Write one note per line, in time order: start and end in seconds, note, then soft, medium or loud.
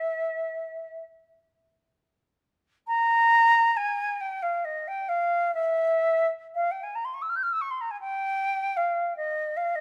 0.00 1.03 E5 medium
2.88 3.78 A#5 loud
3.77 4.22 G#5 medium
4.21 4.44 G5 medium
4.43 4.66 F5 medium
4.65 4.89 D#5 medium
4.88 5.10 G5 medium
5.09 5.54 F5 medium
5.55 6.28 E5 medium
6.55 6.73 F5 medium
6.71 6.85 G5 medium
6.83 6.97 G#5 medium
6.95 7.06 A#5 medium
7.05 7.16 C6 medium
7.14 7.24 C#6 medium
7.22 7.31 E6 medium
7.29 7.38 F6 medium
7.36 7.45 G6 medium
7.43 7.54 F6 medium
7.53 7.63 E6 medium
7.61 7.72 C#6 medium
7.71 7.83 C6 medium
7.81 7.92 A#5 medium
7.91 8.00 G#5 medium
8.01 8.78 G5 medium
8.77 9.16 F5 medium
9.17 9.58 D#5 medium
9.57 9.77 F5 medium
9.75 9.80 D#5 medium